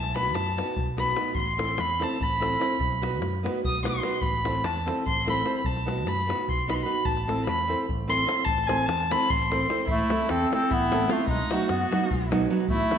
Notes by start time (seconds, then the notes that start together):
Already playing: B1 A5
0.04 davul high
0.15 B3 D#4 F#4 B4 B5, davul high
0.25 B5, davul high
0.34 F#2 A5, davul high
0.47 davul high
0.57 B3 D#4 F#4 B4, davul high
0.77 B1, davul low
0.97 B3 D#4 F#4 B4 B5, davul high
1.16 B3 D#4 F#4 B4, davul high
1.35 A1 C6, davul low
1.47 davul high
1.57 C4 E4 A4 C5, davul high
1.69 davul high
1.78 E2 B5, davul high
1.90 davul high
1.99 C4 E4 A4 C5, davul high
2.04 A5
2.21 A1 B5, davul low
2.40 C4 E4 A4 C5, davul high
2.59 C4 E4 A4 C5, davul high
2.80 B1, davul low
2.92 davul high
3.02 B3 D#4 F#4 B4, davul high
3.21 F#2, davul high
3.43 B3 D#4 F#4 B4, davul high
3.55 davul high
3.65 B1 D#6, davul low
3.75 davul high
3.83 B3 D#4 F#4 B4 C6, davul high
3.95 davul high
4.03 B3 D#4 F#4 B4, davul high
4.13 davul high
4.21 A1 B5, davul low
4.34 davul high
4.44 C4 E4 A4 C5, davul high
4.55 davul high
4.64 E2 A5, davul high
4.76 davul high
4.86 C4 E4 A4 C5, davul high
5.06 A1 C6, davul low
5.26 C4 E4 A4 C5 B5, davul high
5.44 C4 E4 A4 C5, davul high
5.58 B5
5.65 B1 A5, davul low
5.76 davul high
5.85 B3 D#4 F#4 B4, davul high
5.98 davul high
6.06 F#2 B5, davul high
6.19 davul high
6.27 B3 D#4 F#4 B4, davul high
6.48 B1 C6, davul low
6.68 B3 D#4 F#4 B4 B5, davul high
6.74 C6
6.83 B3 D#4 F#4 B5
6.87 B4
7.05 A1 A5, davul low
7.17 davul high
7.28 C4 E4 A4 C5, davul high
7.38 davul high
7.47 E2 B5, davul high
7.59 davul high
7.68 C4 E4 A4 C5
7.89 A1, davul low
8.08 C4 E4 A4 C5 C6
8.26 C4 E4 A4 C5, davul high
8.45 A1 A5, davul low
8.58 davul high
8.67 C4 E4 A4 C5 G#5, davul high
8.79 davul high
8.86 E2 A5, davul high
9.00 davul high
9.11 C4 E4 A4 C5 B5, davul high
9.20 davul high
9.30 A1 C6, davul low
9.42 davul high
9.51 C4 E4 A4 C5, davul high
9.61 davul high
9.69 C4 E4 A4 C5, davul high
9.78 davul high
9.87 A1 A3 E4, davul low
9.99 davul high
10.10 A3 C4 E4 A4, davul high
10.20 davul high
10.29 E2 C4 A4, davul high
10.41 davul high
10.51 A3 C4 E4 A4, davul high
10.71 A1 B3 E4, davul low
10.82 davul high
10.91 A3 C4 E4 A4, davul high
11.01 davul high
11.08 A3 C4 E4 F4 A4, davul high
11.12 A3
11.19 davul high
11.27 B1 G#3 D#4, davul low
11.39 davul high
11.51 F#3 A3 B3 D#4 F#4, davul high
11.60 davul high
11.69 F#2 B3 F#4, davul high
11.81 davul high
11.91 F#3 B3 D#4 F#4, davul high
12.11 B1, davul low
12.22 davul high
12.31 F#3 B3 D#4 F#4, davul high
12.42 davul high
12.50 F#3 B3 D#4 F#4
12.60 davul high
12.68 A1 A3 E4, davul low
12.80 davul high
12.91 E3 A3 C4 E4, davul high